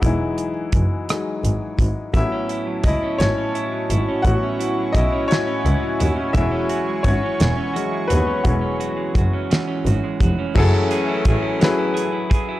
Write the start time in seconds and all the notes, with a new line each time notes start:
Already playing: F#3 G#3 F#4 G#4
0.02 E1 E3 F#3 G#3 D#4 E4, kick, closed hi-hat
0.38 closed hi-hat
0.72 F#1, kick, closed hi-hat
1.09 F#3 G#3 D#4, cross-stick, closed hi-hat
1.44 G#1, closed hi-hat
1.79 G#1, kick, closed hi-hat
2.13 A1 A2 F#3 B3 C#4 E4 F#4 E5 A5 C#6, kick, closed hi-hat
2.32 C#4
2.49 E4, closed hi-hat
2.67 F#3
2.83 C#2 E4 D#5, kick, closed hi-hat
3.03 C#4
3.18 G#1 A2 C#4 C#5, snare, closed hi-hat
3.38 C#4
3.55 E4, closed hi-hat
3.72 F#3
3.90 G#1 E4, closed hi-hat
4.08 C#4
4.22 A1 A2 F#3 B3 C#4 F#4 F#5 G#5, kick, closed hi-hat
4.43 C#4
4.59 E4, closed hi-hat
4.78 F#3
4.92 B1 E4 D#5, kick, closed hi-hat
4.97 E4
5.13 C#4
5.28 A2 C#5, closed hi-hat
5.32 C#4, snare
5.47 C#4
5.65 C#2 E4, closed hi-hat
5.83 F#3
6.00 D#2 E4, closed hi-hat
6.16 C#4
6.33 E1 E3 F#3 G#3 E5 C#6, kick, closed hi-hat
6.37 C#4 E4
6.52 C#4
6.69 F#4, closed hi-hat
6.88 G#3
7.03 G#1 F#4 C#5, kick, closed hi-hat
7.07 C#4
7.23 C#4
7.40 E1 E3, snare, closed hi-hat
7.57 C#4
7.73 F#3 G#3 C#4 F#4, closed hi-hat
7.93 G#3
8.08 D#2 B3 F#4 B4, closed hi-hat
8.27 C#4
8.43 E1 E3 F#3 G#3 C#4 F#4, kick, closed hi-hat
8.61 C#4
8.80 F#4, closed hi-hat
8.97 G#3
9.15 F#1 F#4, kick, closed hi-hat
9.33 C#4
9.50 E3, snare, closed hi-hat
9.68 C#4
9.86 G#1 F#4, closed hi-hat
10.04 G#3
10.21 F1 F#4, kick, closed hi-hat
10.39 C#4
10.55 F#1 E3 F#3 A3 C#4 E4 G#4 A4, kick, crash
10.73 E4
10.91 G#4, closed hi-hat
11.09 E4
11.25 A1 G#4, kick, closed hi-hat
11.42 E4
11.59 F#3 E4 G#4, snare, closed hi-hat
11.64 B4
11.78 E4
11.94 G#4, closed hi-hat
12.12 E4
12.30 G#4, kick, closed hi-hat
12.49 E4